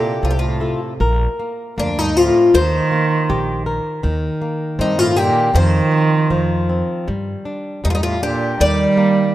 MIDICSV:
0, 0, Header, 1, 5, 480
1, 0, Start_track
1, 0, Key_signature, -2, "major"
1, 0, Tempo, 779221
1, 622, Time_signature, 2, 2, 24, 8
1, 1099, Tempo, 751880
1, 3499, Tempo, 765306
1, 5886, End_track
2, 0, Start_track
2, 0, Title_t, "Twelve-string acoustic guitar"
2, 0, Program_c, 0, 25
2, 0, Note_on_c, 0, 67, 70
2, 152, Note_on_c, 0, 65, 54
2, 153, Note_off_c, 0, 67, 0
2, 187, Note_off_c, 0, 65, 0
2, 188, Note_on_c, 0, 67, 48
2, 230, Note_off_c, 0, 67, 0
2, 240, Note_on_c, 0, 65, 54
2, 489, Note_off_c, 0, 65, 0
2, 1106, Note_on_c, 0, 62, 74
2, 1229, Note_off_c, 0, 62, 0
2, 1229, Note_on_c, 0, 63, 70
2, 1344, Note_off_c, 0, 63, 0
2, 1344, Note_on_c, 0, 65, 73
2, 1586, Note_off_c, 0, 65, 0
2, 1586, Note_on_c, 0, 72, 92
2, 2275, Note_off_c, 0, 72, 0
2, 3031, Note_on_c, 0, 63, 68
2, 3144, Note_off_c, 0, 63, 0
2, 3144, Note_on_c, 0, 65, 73
2, 3257, Note_off_c, 0, 65, 0
2, 3257, Note_on_c, 0, 67, 83
2, 3505, Note_off_c, 0, 67, 0
2, 3507, Note_on_c, 0, 72, 91
2, 4202, Note_off_c, 0, 72, 0
2, 4944, Note_on_c, 0, 63, 71
2, 4974, Note_off_c, 0, 63, 0
2, 4979, Note_on_c, 0, 65, 65
2, 5004, Note_off_c, 0, 65, 0
2, 5007, Note_on_c, 0, 63, 67
2, 5056, Note_off_c, 0, 63, 0
2, 5059, Note_on_c, 0, 65, 73
2, 5174, Note_off_c, 0, 65, 0
2, 5184, Note_on_c, 0, 67, 78
2, 5422, Note_on_c, 0, 74, 101
2, 5431, Note_off_c, 0, 67, 0
2, 5886, Note_off_c, 0, 74, 0
2, 5886, End_track
3, 0, Start_track
3, 0, Title_t, "Nylon-string guitar"
3, 0, Program_c, 1, 24
3, 0, Note_on_c, 1, 48, 55
3, 0, Note_on_c, 1, 64, 41
3, 0, Note_on_c, 1, 65, 37
3, 0, Note_on_c, 1, 69, 49
3, 125, Note_off_c, 1, 48, 0
3, 142, Note_on_c, 1, 48, 60
3, 282, Note_off_c, 1, 64, 0
3, 284, Note_off_c, 1, 65, 0
3, 284, Note_off_c, 1, 69, 0
3, 371, Note_on_c, 1, 64, 35
3, 372, Note_on_c, 1, 65, 36
3, 377, Note_on_c, 1, 69, 45
3, 567, Note_off_c, 1, 64, 0
3, 568, Note_off_c, 1, 65, 0
3, 571, Note_off_c, 1, 69, 0
3, 608, Note_off_c, 1, 48, 0
3, 621, Note_on_c, 1, 70, 64
3, 859, Note_on_c, 1, 58, 49
3, 1088, Note_off_c, 1, 58, 0
3, 1095, Note_on_c, 1, 58, 54
3, 1334, Note_off_c, 1, 58, 0
3, 1344, Note_on_c, 1, 60, 53
3, 1560, Note_off_c, 1, 70, 0
3, 1579, Note_off_c, 1, 60, 0
3, 1583, Note_on_c, 1, 51, 68
3, 1820, Note_on_c, 1, 58, 49
3, 2053, Note_off_c, 1, 58, 0
3, 2064, Note_on_c, 1, 67, 58
3, 2294, Note_off_c, 1, 67, 0
3, 2298, Note_on_c, 1, 70, 53
3, 2512, Note_off_c, 1, 51, 0
3, 2530, Note_off_c, 1, 70, 0
3, 2535, Note_on_c, 1, 51, 71
3, 2779, Note_on_c, 1, 58, 52
3, 3011, Note_off_c, 1, 58, 0
3, 3018, Note_on_c, 1, 60, 56
3, 3248, Note_off_c, 1, 51, 0
3, 3251, Note_off_c, 1, 60, 0
3, 3256, Note_on_c, 1, 51, 51
3, 3491, Note_off_c, 1, 51, 0
3, 3495, Note_on_c, 1, 53, 64
3, 3732, Note_on_c, 1, 60, 48
3, 3963, Note_off_c, 1, 53, 0
3, 3970, Note_off_c, 1, 60, 0
3, 3978, Note_on_c, 1, 53, 62
3, 4220, Note_on_c, 1, 60, 42
3, 4450, Note_off_c, 1, 53, 0
3, 4457, Note_off_c, 1, 60, 0
3, 4460, Note_on_c, 1, 55, 67
3, 4697, Note_on_c, 1, 62, 47
3, 4930, Note_off_c, 1, 55, 0
3, 4935, Note_off_c, 1, 62, 0
3, 4938, Note_on_c, 1, 55, 54
3, 5175, Note_off_c, 1, 55, 0
3, 5183, Note_on_c, 1, 62, 50
3, 5417, Note_off_c, 1, 62, 0
3, 5420, Note_on_c, 1, 51, 68
3, 5650, Note_on_c, 1, 58, 56
3, 5885, Note_off_c, 1, 58, 0
3, 5886, Note_off_c, 1, 51, 0
3, 5886, End_track
4, 0, Start_track
4, 0, Title_t, "Cello"
4, 0, Program_c, 2, 42
4, 0, Note_on_c, 2, 46, 66
4, 129, Note_off_c, 2, 46, 0
4, 142, Note_on_c, 2, 45, 54
4, 170, Note_off_c, 2, 45, 0
4, 174, Note_on_c, 2, 46, 46
4, 219, Note_off_c, 2, 46, 0
4, 228, Note_on_c, 2, 45, 56
4, 482, Note_off_c, 2, 45, 0
4, 1093, Note_on_c, 2, 41, 65
4, 1219, Note_on_c, 2, 43, 63
4, 1229, Note_off_c, 2, 41, 0
4, 1346, Note_on_c, 2, 45, 70
4, 1356, Note_off_c, 2, 43, 0
4, 1587, Note_off_c, 2, 45, 0
4, 1591, Note_on_c, 2, 51, 94
4, 2277, Note_off_c, 2, 51, 0
4, 3026, Note_on_c, 2, 43, 69
4, 3139, Note_on_c, 2, 45, 69
4, 3149, Note_off_c, 2, 43, 0
4, 3266, Note_on_c, 2, 46, 79
4, 3275, Note_off_c, 2, 45, 0
4, 3500, Note_off_c, 2, 46, 0
4, 3504, Note_on_c, 2, 51, 96
4, 4201, Note_off_c, 2, 51, 0
4, 4946, Note_on_c, 2, 43, 67
4, 4974, Note_off_c, 2, 43, 0
4, 4979, Note_on_c, 2, 45, 51
4, 5002, Note_off_c, 2, 45, 0
4, 5005, Note_on_c, 2, 43, 59
4, 5056, Note_off_c, 2, 43, 0
4, 5060, Note_on_c, 2, 45, 63
4, 5175, Note_off_c, 2, 45, 0
4, 5184, Note_on_c, 2, 46, 74
4, 5407, Note_off_c, 2, 46, 0
4, 5420, Note_on_c, 2, 55, 98
4, 5886, Note_off_c, 2, 55, 0
4, 5886, End_track
5, 0, Start_track
5, 0, Title_t, "Upright bass"
5, 0, Program_c, 3, 32
5, 139, Note_on_c, 3, 36, 77
5, 453, Note_off_c, 3, 36, 0
5, 617, Note_on_c, 3, 34, 94
5, 774, Note_off_c, 3, 34, 0
5, 1095, Note_on_c, 3, 38, 93
5, 1413, Note_off_c, 3, 38, 0
5, 1582, Note_on_c, 3, 39, 99
5, 1740, Note_off_c, 3, 39, 0
5, 2065, Note_on_c, 3, 34, 106
5, 2373, Note_off_c, 3, 34, 0
5, 2539, Note_on_c, 3, 39, 95
5, 2694, Note_off_c, 3, 39, 0
5, 3017, Note_on_c, 3, 43, 98
5, 3330, Note_off_c, 3, 43, 0
5, 3501, Note_on_c, 3, 41, 104
5, 3655, Note_off_c, 3, 41, 0
5, 3975, Note_on_c, 3, 41, 92
5, 4292, Note_off_c, 3, 41, 0
5, 4462, Note_on_c, 3, 43, 91
5, 4620, Note_off_c, 3, 43, 0
5, 4943, Note_on_c, 3, 40, 91
5, 5255, Note_off_c, 3, 40, 0
5, 5417, Note_on_c, 3, 39, 95
5, 5574, Note_off_c, 3, 39, 0
5, 5886, End_track
0, 0, End_of_file